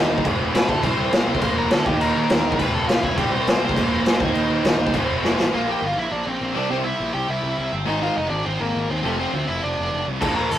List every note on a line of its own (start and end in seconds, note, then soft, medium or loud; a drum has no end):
0.00 0.23 D#3 medium
0.00 0.23 D#3 loud
0.00 0.24 A#3 medium
0.00 0.24 A#3 loud
0.00 0.25 D#4 medium
0.00 0.26 D#4 loud
0.10 0.19 D#2 medium
0.18 kick medium
0.23 0.34 F1 medium
0.23 0.67 F2 medium
0.23 0.68 C3 loud
0.23 0.67 F3 loud
0.23 kick loud
0.23 crash medium
0.39 0.48 F1 loud
0.53 0.63 C2 medium
0.53 0.82 F2 medium
0.53 0.82 C3 medium
0.53 0.82 F3 loud
0.53 0.68 B4 medium
0.53 0.69 B5 loud
0.53 snare loud
0.53 crash medium
0.68 0.78 D2 loud
0.68 0.84 F2 medium
0.68 0.80 C3 medium
0.68 0.82 F3 medium
0.68 0.82 A4 medium
0.68 0.84 A5 loud
0.68 kick loud
0.82 0.93 C2 loud
0.82 1.26 C3 loud
0.82 1.27 G3 loud
0.82 1.26 C4 loud
0.82 1.38 C5 medium
0.82 1.41 C6 loud
0.82 kick loud
0.82 crash medium
0.98 1.07 C2 medium
1.12 1.22 C2 loud
1.12 1.41 C3 medium
1.12 1.41 G3 loud
1.12 1.41 C4 loud
1.12 snare loud
1.12 crash medium
1.26 1.36 C2 loud
1.26 1.42 G3 medium
1.26 1.41 C4 medium
1.31 1.40 C3 medium
1.35 kick medium
1.40 1.51 A#1 medium
1.40 1.84 A#2 loud
1.40 1.85 F3 loud
1.40 1.86 A#3 loud
1.40 1.55 C5 medium
1.40 1.56 C6 loud
1.40 kick loud
1.40 crash medium
1.57 1.66 F1 loud
1.57 1.71 A#4 medium
1.57 1.71 A#5 medium
1.70 1.81 D2 loud
1.70 1.86 A#2 medium
1.70 1.85 F3 medium
1.70 1.85 A#3 loud
1.70 1.85 A4 medium
1.70 1.86 A5 loud
1.70 snare loud
1.70 crash medium
1.85 1.95 D#2 medium
1.85 2.27 D#3 medium
1.85 2.30 A#3 loud
1.85 2.30 D#4 loud
1.85 1.99 G4 medium
1.85 2.01 G5 medium
1.85 kick loud
2.00 2.10 D#2 loud
2.00 2.29 D#3 medium
2.00 2.28 A#3 medium
2.00 2.28 D#4 loud
2.00 2.55 A#4 medium
2.00 2.59 A#5 medium
2.00 crash medium
2.16 2.25 D#2 loud
2.29 2.40 D#2 medium
2.29 2.58 D#3 medium
2.29 2.59 A#3 medium
2.29 snare loud
2.29 crash medium
2.33 2.60 D#4 medium
2.45 2.54 E2 medium
2.52 kick medium
2.57 2.69 F1 medium
2.57 3.01 F2 medium
2.57 3.02 C3 loud
2.57 3.00 F3 loud
2.57 2.73 B4 medium
2.57 2.75 B5 loud
2.57 kick loud
2.57 crash medium
2.74 2.84 F1 loud
2.74 2.88 A4 medium
2.74 2.89 A5 medium
2.87 2.98 C2 loud
2.87 3.17 F2 medium
2.87 3.15 C3 medium
2.87 3.17 F3 loud
2.87 3.01 F4 medium
2.87 3.04 F5 loud
2.87 snare loud
2.87 crash medium
3.01 3.13 C2 loud
3.01 3.18 F2 medium
3.01 3.15 C3 medium
3.01 3.16 F3 medium
3.01 3.17 E4 medium
3.01 3.17 E5 medium
3.01 kick medium
3.17 3.27 C2 loud
3.17 3.60 C3 loud
3.17 3.61 G3 loud
3.17 3.59 C4 loud
3.17 3.32 G4 medium
3.17 3.31 G5 loud
3.17 kick medium
3.17 crash medium
3.32 3.41 C2 medium
3.32 5.19 C5 medium
3.32 5.18 C6 loud
3.47 3.56 C2 loud
3.47 3.75 C3 medium
3.47 3.75 G3 loud
3.47 3.75 C4 loud
3.47 snare loud
3.47 crash medium
3.60 3.72 C2 medium
3.60 3.75 C3 medium
3.60 3.76 G3 medium
3.60 3.75 C4 medium
3.69 kick medium
3.75 3.86 A#1 medium
3.75 4.19 A#2 medium
3.75 4.20 F3 loud
3.75 4.19 A#3 loud
3.75 kick medium
3.75 crash medium
3.92 4.01 F1 loud
4.04 4.16 A#1 loud
4.04 4.19 A#2 medium
4.04 4.19 F3 medium
4.04 4.18 A#3 loud
4.04 snare loud
4.04 crash medium
4.19 4.30 D#2 loud
4.19 4.62 D#3 loud
4.19 4.63 A#3 loud
4.19 4.64 D#4 medium
4.19 kick loud
4.33 4.44 D#2 medium
4.33 4.63 D#3 medium
4.33 4.62 A#3 medium
4.33 4.61 D#4 loud
4.33 crash medium
4.50 4.59 D#2 medium
4.62 4.74 D#2 medium
4.62 4.92 D#3 medium
4.62 4.93 A#3 medium
4.62 4.92 D#4 loud
4.62 snare loud
4.62 crash medium
4.67 4.94 D#4 medium
4.80 4.89 D#2 medium
4.87 kick medium
4.93 5.03 F1 medium
4.93 5.21 F2 medium
4.93 5.23 C3 loud
4.93 5.21 F3 loud
4.93 kick loud
4.93 crash medium
4.97 5.24 F3 loud
5.10 5.18 F1 loud
5.22 5.33 F1 loud
5.22 5.51 F2 loud
5.22 5.52 C3 loud
5.22 5.53 F3 loud
5.22 snare medium
5.39 5.47 A1 medium
5.39 snare medium
5.53 5.74 A#1 medium
5.53 5.64 A#2 loud
5.53 5.65 F3 loud
5.53 5.65 A#3 loud
5.53 5.67 F4 medium
5.53 5.69 F5 medium
5.67 5.79 A#2 medium
5.67 5.79 F3 loud
5.67 5.79 A#3 loud
5.67 5.82 G4 medium
5.71 5.87 G5 medium
5.82 5.92 G1 medium
5.82 5.96 F4 medium
5.87 5.99 F5 medium
5.97 6.07 A#1 medium
5.97 6.10 E4 medium
5.97 6.12 E5 medium
6.11 6.22 A#1 medium
6.11 6.25 D4 medium
6.11 6.29 D5 medium
6.26 6.36 A#1 loud
6.26 6.54 C4 medium
6.26 6.57 C5 medium
6.42 6.52 A#1 medium
6.54 6.66 C2 medium
6.54 6.66 C3 medium
6.54 6.67 G3 medium
6.54 6.67 C4 medium
6.54 6.69 D4 medium
6.58 6.71 D5 medium
6.69 6.91 C2 medium
6.69 6.81 C3 loud
6.69 6.81 G3 loud
6.69 6.81 C4 loud
6.69 6.75 C4 medium
6.69 6.76 C5 medium
6.84 7.11 E4 medium
6.84 7.14 E5 medium
7.00 7.10 A#1 medium
7.13 7.25 C2 medium
7.13 7.27 G4 medium
7.13 7.30 G5 medium
7.29 7.39 C2 medium
7.29 7.70 E4 medium
7.29 7.73 E5 medium
7.44 7.54 C2 loud
7.58 7.69 C2 medium
7.73 7.83 G1 loud
7.85 8.08 G#1 medium
7.85 7.98 G#2 medium
7.85 7.98 D#3 loud
7.85 7.99 G#3 loud
7.85 8.01 D#4 medium
7.85 8.01 D#5 medium
8.01 8.13 G#2 medium
8.01 8.13 D#3 loud
8.01 8.13 G#3 loud
8.01 8.16 F4 medium
8.01 8.17 F5 medium
8.16 8.28 F1 medium
8.16 8.29 D#4 medium
8.16 8.30 D#5 medium
8.29 8.41 G#1 medium
8.29 8.44 D4 medium
8.29 8.44 D5 medium
8.45 8.57 G#1 medium
8.45 8.59 C4 medium
8.45 8.60 C5 medium
8.60 8.71 G#1 loud
8.60 8.87 A#3 medium
8.60 8.90 A#4 medium
8.75 8.86 G#1 loud
8.90 9.00 D#2 loud
8.90 9.04 C4 medium
8.90 9.03 C5 medium
9.03 9.25 F1 loud
9.03 9.15 F2 loud
9.03 9.16 C3 loud
9.03 9.16 F3 loud
9.03 9.18 A3 medium
9.03 9.18 A4 medium
9.18 9.30 F2 medium
9.18 9.30 C3 medium
9.18 9.31 F3 loud
9.18 9.47 C4 medium
9.18 9.49 C5 loud
9.34 9.44 D2 loud
9.48 9.59 F1 medium
9.48 9.62 E4 medium
9.48 9.63 E5 loud
9.63 9.74 F1 loud
9.63 10.04 D4 medium
9.63 10.04 D5 loud
9.79 9.89 F1 loud
9.93 10.03 F1 medium
10.08 10.18 C2 medium
10.21 10.43 A#1 loud
10.21 10.33 A#2 loud
10.21 10.33 F3 loud
10.21 10.34 A#3 loud
10.21 10.35 A4 medium
10.21 10.36 A5 medium
10.21 kick loud
10.21 crash medium
10.35 10.48 A#2 medium
10.35 10.48 F3 medium
10.35 10.48 A#3 loud
10.35 10.49 A#4 medium
10.35 10.51 A#5 medium
10.50 10.59 G1 medium
10.50 10.59 A4 medium
10.50 10.59 A5 medium
10.50 open hi-hat medium